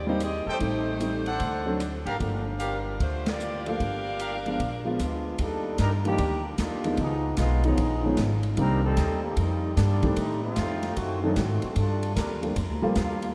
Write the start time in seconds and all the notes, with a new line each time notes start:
Already playing: D#2
0.07 G3 G#3 A#3 C4 D#4 G4 C5
0.20 C4 G4 G#4 D#5, cross-stick, hi-hat pedal, ride
0.46 E2 A3 D#4 G4 A4 C5 G5
0.50 D#4
0.59 A1 G3 A3 C4 D#4, kick, ride
1.00 G3 A3 C4 D#4, hi-hat pedal, ride
1.26 D4 A4 C5 F#5, ride
1.40 D2, kick, ride
1.66 F#3 A3 C4 D4
1.80 cross-stick, hi-hat pedal, ride
2.06 G#1 D4 G4 A#4 F5, ride
2.19 G1 F3 A3 A#3 D4, kick, ride
2.60 G3 D4 F4 G4 A#4 F5, hi-hat pedal, ride
3.00 D2 A3 D4 F4 C5, kick, ride
3.26 A#3 F4 G4 D5, snare, ride
3.40 hi-hat pedal
3.66 F3 A3 A#3 D4 F4 G4 A#4 F5, ride
3.80 G1, kick, ride
4.19 D4 G4 A#4 F5, hi-hat pedal, ride
4.46 F3 G#3 B3 D4, ride
4.60 A#1, kick, ride
4.85 F3 G#3 B3 F4
4.99 D2 G#3 B3 D4 F4, cross-stick, hi-hat pedal, ride
5.38 D#2 G3 D4 D#4 A4, kick, ride
5.78 G2 G3 D4 D#4 A#4, kick, snare, hi-hat pedal, ride
6.05 D#3 F3 G3 A#3 D4 G4, ride
6.18 D2, kick, ride
6.58 D#2 A#3 D4 D#4 F4, kick, snare, hi-hat pedal, ride
6.84 D#3 F3 G#3 B3 D#4, ride
6.97 C#2 F3 G#3 B3 D#4, kick, ride
7.37 B1 G#3 B3 D#4 F4, kick, snare, hi-hat pedal, ride
7.64 D#3 F3 G#3 B3 C#4 D#4, ride
7.78 A#1, kick, ride
8.04 D#3 F3 G#3 B3 C#4
8.17 G#1, kick, snare, hi-hat pedal, ride
8.43 ride
8.57 C2 D#3 G3 A#3 C4 D4 D#4 A#4, kick, ride
8.84 G3 C4 D#4 A4
8.97 D#2, kick, snare, hi-hat pedal, ride
9.23 D#3 A#3 C4 G4
9.37 F2 G3 A#3 C4 D#4, kick, ride
9.76 G2 G3 A#3 C4 D4, kick, snare, hi-hat pedal, ride
10.03 D#3 G3 A3 C4 D4, kick, ride
10.16 A2 G3 A3 C4 D#4, kick, ride
10.43 A3 C4 D#4 F4
10.56 F2, kick, snare, hi-hat pedal, ride
10.83 snare, ride
10.96 F#2 D#3 A3 C4 F#4, kick, ride
11.23 D#3 F#3 A3 C4 D4 D#4 A4
11.36 G#2 D#3 A3 C4 F#4, kick, snare, hi-hat pedal, ride
11.62 muted upright bass stroke, ride
11.76 G2 G3 D4 F4 A4, kick, ride
12.03 ride
12.15 D#2 G3 D4 F4 A#4, kick, snare, hi-hat pedal, ride
12.42 F3 G3 A3 A#3 D4, ride
12.56 F2, kick, ride
12.69 D2
12.82 A#1 F3 G3 A3 A#3 F4
12.94 D#2 G3 A#3 D4 F4, kick, snare, hi-hat pedal, ride
13.22 ride